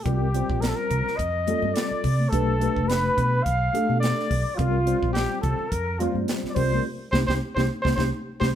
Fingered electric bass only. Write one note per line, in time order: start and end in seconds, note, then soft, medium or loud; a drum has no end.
0.05 0.40 C2 medium
0.49 0.72 A#1 medium
0.90 1.03 C2 medium
1.19 1.53 F2 medium
1.62 1.73 G2 medium
1.91 muted fingered electric bass stroke soft
2.04 2.26 C3 medium
2.32 2.67 B1 medium
2.76 3.08 F1 medium
3.17 3.39 B2 medium
3.46 3.68 B1 medium
3.89 4.12 B2 medium
4.31 4.43 B1 medium
4.59 4.93 C2 medium
5.02 5.24 A#1 medium
5.43 5.56 C2 medium
5.72 6.06 F2 medium
6.14 6.25 G2 medium
6.43 muted fingered electric bass stroke soft
6.56 6.78 C2 medium
7.13 7.24 C2 medium
7.28 7.38 C2 medium
7.56 7.66 C2 medium
7.85 7.94 C2 medium
7.97 8.09 C2 medium
8.41 8.51 C2 medium